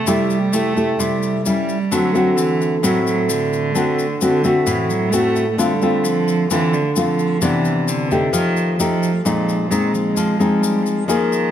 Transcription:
0.07 C3 G3 A3 E4 G4, shaker
0.30 shaker
0.53 A3 E4 G4, shaker
0.77 A3 E4 G4, shaker
0.99 C3 G3, shaker
1.23 shaker
1.44 G3 C#4 E4, shaker
1.69 shaker
1.91 D3 F#3 A3 C4 F#4, shaker
2.15 A3 C4 F#4, shaker
2.36 E3, shaker
2.61 shaker
2.82 A2 F#3 A3 C4 F#4, shaker
3.05 F#3, shaker
3.29 D3, shaker
3.53 shaker
3.75 D3 A3 C4 F#4, shaker
3.99 shaker
4.21 D3 A3 C4 F#4, shaker
4.44 A3 C4 F#4, shaker
4.67 A2 E3, shaker
4.90 F#3, shaker
5.12 A3 C4 F#4, shaker
5.36 shaker
5.51 A3
5.58 D3 G3 A3 C4 F4, shaker
5.82 A3 C4 F4, shaker
6.05 F3, shaker
6.28 shaker
6.51 D3 E3 A3 C4 F4, shaker
6.73 D3, shaker
6.96 F3 A3 C4 F4, shaker
7.19 shaker
7.42 C3 E3 B3 D4, shaker
7.65 shaker
7.88 D3, shaker
8.11 A3 D#4 G4, shaker
8.33 D#3 F3, shaker
8.57 shaker
8.79 F3 A3 D#4 G4, shaker
9.03 shaker
9.25 A#2 F3 G#3 C4 D#4, shaker
9.49 shaker
9.71 D#3 G#3 C4 D#4, shaker
9.93 F3, shaker
10.15 F3 G#3, shaker
10.39 F3 G#3 C4 D#4, shaker
10.61 G3, shaker
10.83 F3, shaker
11.07 D#3 F3 A#3 D#4 G#4, shaker
11.32 shaker

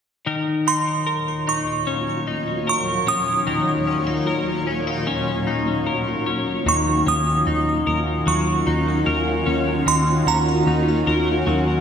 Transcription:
0.26 D#2 A#2 D#3 F#3 F4 A#4 C#5
0.67 D#4 C6
1.07 A#4
1.47 D#4 C#6
1.87 C#4
2.27 D#4
2.67 A#4 C#6
3.07 C#4 D#6
3.47 D#3 A#4
3.87 C#4
4.07 D#4
4.27 A#4
4.67 C#4
4.87 D#4
5.07 C#4
5.47 D#4
5.87 A#4
6.26 C#4
6.66 D#2 D#3 A#3 C#4 F4 F#4 C#6
7.06 D#2 C#4 D#6
7.47 D#2 D#4
7.87 D#2 A#4
8.27 D#2 F#3 C#6
8.67 D#2 D#4
9.06 D#2 A#4
9.46 D#2 C#4
9.86 D#2 D#3 C6
10.27 D#2 C#4 A#5
10.67 D#2 D#4
11.07 D#2 A#4
11.47 D#2 F#3

